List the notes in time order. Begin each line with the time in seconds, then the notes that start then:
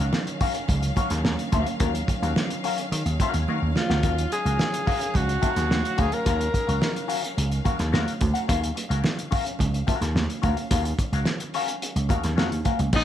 Already playing: D#3 F#3 C#4 F5
0.00 C#4 F#4 A#4 F5, closed hi-hat
0.13 muted hollow-body jazz guitar stroke, snare, high conga
0.27 muted hollow-body jazz guitar stroke, closed hi-hat
0.41 C#4 F#4 A#4 F5, kick, open hi-hat
0.54 muted hollow-body jazz guitar stroke, closed hi-hat
0.68 C#2, muted hollow-body jazz guitar stroke, kick, closed hi-hat, low conga
0.82 muted hollow-body jazz guitar stroke, closed hi-hat
0.96 C#4 F#4 A#4 F5, kick, closed hi-hat, muted conga
1.10 D#2, muted hollow-body jazz guitar stroke, snare, closed hi-hat
1.24 D#2, muted hollow-body jazz guitar stroke, snare, high conga
1.39 muted hollow-body jazz guitar stroke, closed hi-hat
1.52 D2 C#4 F#4 A#4 F5, kick, closed hi-hat, high conga
1.66 muted hollow-body jazz guitar stroke, closed hi-hat
1.80 D#2 C#4 F#4 A#4 F5, kick, closed hi-hat, muted conga
1.94 muted hollow-body jazz guitar stroke, closed hi-hat
2.08 muted hollow-body jazz guitar stroke, kick, closed hi-hat, muted conga
2.22 D#2 C#4 F#4 A#4 F5, closed hi-hat
2.36 muted hollow-body jazz guitar stroke, snare, high conga
2.50 muted hollow-body jazz guitar stroke, closed hi-hat
2.64 C#4 F#4 A#4 F5, open hi-hat
2.78 muted hollow-body jazz guitar stroke, closed hi-hat
2.92 D#3, muted hollow-body jazz guitar stroke, closed hi-hat
3.06 D#2, muted hollow-body jazz guitar stroke, closed hi-hat
3.20 C#4 F#4 A#4 F5, kick, closed hi-hat, muted conga
3.34 D#2, muted hollow-body jazz guitar stroke, closed hi-hat
3.48 D#3 C#4 F#4 A#4 F5, high conga
3.62 D#2
3.75 F4, muted hollow-body jazz guitar stroke, snare, high conga
3.90 D2 C#4 F#4 A#4 F#5, snare
4.03 D#2 C#4 F#4 A#4 F5, kick, closed hi-hat, muted conga
4.18 muted hollow-body jazz guitar stroke, closed hi-hat
4.32 G#4, muted hollow-body jazz guitar stroke, closed hi-hat
4.45 C#2 C#4 F#4 A#4 F5, closed hi-hat
4.59 muted hollow-body jazz guitar stroke, snare, high conga
4.72 muted hollow-body jazz guitar stroke, closed hi-hat
4.86 C#4 F#4 A#4 F5, kick, open hi-hat
5.00 muted hollow-body jazz guitar stroke, closed hi-hat
5.14 C#2 F#4, muted hollow-body jazz guitar stroke, kick, closed hi-hat, low conga
5.29 muted hollow-body jazz guitar stroke, closed hi-hat
5.41 C#4 F#4 A#4 F5, kick, closed hi-hat, muted conga
5.56 D#2, muted hollow-body jazz guitar stroke, snare, closed hi-hat
5.69 D#2, muted hollow-body jazz guitar stroke, snare, high conga
5.84 muted hollow-body jazz guitar stroke, closed hi-hat
5.97 D2 C#4 F#4 G#4 A#4 F5, kick, closed hi-hat, high conga
6.12 A#4, muted hollow-body jazz guitar stroke, closed hi-hat
6.25 D#2 C#4 F#4 A#4 F5, kick, closed hi-hat
6.39 muted hollow-body jazz guitar stroke, closed hi-hat
6.53 muted hollow-body jazz guitar stroke, kick, closed hi-hat
6.67 C#2 C#4 F#4 A#4 F5, closed hi-hat
6.81 muted hollow-body jazz guitar stroke, snare, high conga
6.95 muted hollow-body jazz guitar stroke, closed hi-hat
7.08 C#4 F#4 A#4 F5, open hi-hat
7.22 muted hollow-body jazz guitar stroke, closed hi-hat
7.36 C#2, muted hollow-body jazz guitar stroke, closed hi-hat
7.50 muted hollow-body jazz guitar stroke, closed hi-hat
7.65 C#4 F#4 A#4 F5, kick, closed hi-hat, muted conga, low conga
7.78 D#2, muted hollow-body jazz guitar stroke, snare, closed hi-hat
7.92 D#2 C#4 F#4 A#4 F5, snare, high conga
8.08 closed hi-hat
8.21 D2, muted hollow-body jazz guitar stroke, kick, closed hi-hat, high conga
8.34 C#4 F#4 A#4 F#5, closed hi-hat
8.48 D#2 C#4 F#4 A#4 F5, kick, closed hi-hat, muted conga
8.62 muted hollow-body jazz guitar stroke, closed hi-hat
8.74 muted hollow-body jazz guitar stroke, closed hi-hat, muted conga
8.89 C#2 C#4 F#4 A#4 F5, closed hi-hat
9.02 muted hollow-body jazz guitar stroke, snare, high conga
9.17 muted hollow-body jazz guitar stroke, closed hi-hat
9.31 C#4 F#4 A#4 F5, kick, open hi-hat
9.45 muted hollow-body jazz guitar stroke, closed hi-hat
9.59 C#2, muted hollow-body jazz guitar stroke, kick, closed hi-hat, low conga
9.74 muted hollow-body jazz guitar stroke, closed hi-hat
9.87 C#4 F#4 A#4 F5, kick, closed hi-hat, muted conga
10.00 D#2, muted hollow-body jazz guitar stroke, snare, closed hi-hat
10.15 D#2, muted hollow-body jazz guitar stroke, snare, high conga
10.29 muted hollow-body jazz guitar stroke, closed hi-hat
10.42 D2 C#4 F#4 A#4 F5, kick, closed hi-hat, high conga
10.56 muted hollow-body jazz guitar stroke, closed hi-hat
10.71 D#2 C#4 F#4 A#4 F5, kick, closed hi-hat, muted conga
10.84 muted hollow-body jazz guitar stroke, closed hi-hat
10.99 muted hollow-body jazz guitar stroke, kick, closed hi-hat
11.12 C#2 C#4 F#4 A#4 F5, closed hi-hat
11.25 muted hollow-body jazz guitar stroke, snare, high conga
11.40 muted hollow-body jazz guitar stroke, closed hi-hat
11.54 C#4 F#4 A#4 F5, open hi-hat
11.68 muted hollow-body jazz guitar stroke, closed hi-hat
11.82 muted hollow-body jazz guitar stroke, closed hi-hat
11.96 C#2, muted hollow-body jazz guitar stroke, closed hi-hat
12.09 D#2 C#4 F#4 A#4 F5, kick, closed hi-hat, muted conga, low conga
12.23 D#2, muted hollow-body jazz guitar stroke, snare, closed hi-hat
12.36 F2 C#4 F#4 A#4 F5, snare, high conga
12.51 D#2, muted hollow-body jazz guitar stroke, closed hi-hat
12.65 C#4 F#4 A#4 F5, kick, closed hi-hat, high conga
12.79 C#2, muted hollow-body jazz guitar stroke, closed hi-hat
12.93 A#1 C#4 D#4 G#4 C5 D#5, kick, crash, muted conga